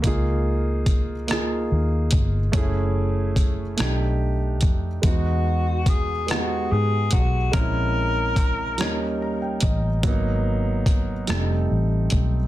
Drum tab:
HH |x-xx-x|x-xx-x|x-xx-x|x-xx-x|
SD |---r--|---r--|---r--|---r--|
BD |o-o--o|o-o--o|o-o--o|o-o--o|

HH |x-xx-x|
SD |---r--|
BD |o-o--o|